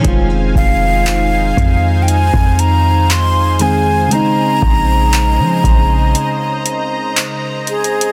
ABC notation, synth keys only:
X:1
M:4/4
L:1/8
Q:1/4=59
K:Bbm
V:1 name="Synth keys"
[E,A,CF]6- [E,A,CF] [E,A,CA] | [D,A,CE]8 |]